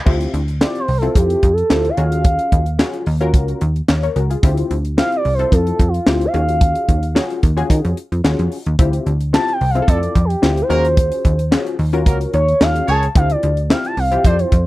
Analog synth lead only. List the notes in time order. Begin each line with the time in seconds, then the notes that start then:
0.61 D5
0.80 C5
0.98 A4
1.16 G4
1.53 A4
1.89 F5
4.98 F5
5.16 D5
5.34 C5
5.52 A4
5.88 F4
6.25 F5
9.34 A5
9.53 G5
9.70 F5
9.89 D5
10.25 G4
10.62 C5
12.34 C#5
12.62 F5
12.89 A5
13.16 F5
13.31 D5
13.71 F5
13.86 A5
13.99 F5
14.26 D5
14.40 C5